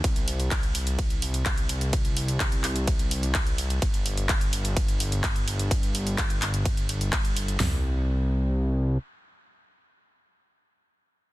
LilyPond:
<<
  \new Staff \with { instrumentName = "Analog synth bass" } { \clef bass \time 4/4 \key g \phrygian \tempo 4 = 127 c,1~ | c,1 | g,,1~ | g,,1 |
c,2. r4 | r1 | }
  \new DrumStaff \with { instrumentName = "Drums" } \drummode { \time 4/4 <hh bd cymr>16 hh16 hho16 hh16 <hc hh bd cymr>16 hh16 hho16 hh16 <hh bd cymr>16 hh16 hho16 hh16 <hc hh bd cymr>16 hh16 hho16 hh16 | <hh bd cymr>16 hh16 hho16 hh16 <hc hh bd cymr>16 hh16 <hc hho>16 hh16 <hh bd cymr>16 hh16 hho16 hh16 <hc hh bd cymr>16 hh16 hho16 hh16 | <hh bd cymr>16 hh16 hho16 hh16 <hc hh bd cymr>16 hh16 hho16 hh16 <hh bd cymr>16 hh16 hho16 hh16 <hc hh bd cymr>16 hh16 hho16 hh16 | <hh bd cymr>16 hh16 hho16 hh16 <hc hh bd cymr>16 hh16 <hc hho>16 hh16 <hh bd cymr>16 hh16 hho16 hh16 <hc hh bd cymr>16 hh16 hho16 hh16 |
<hho sn tomfh>4 r4 r4 r4 | r4 r4 r4 r4 | }
>>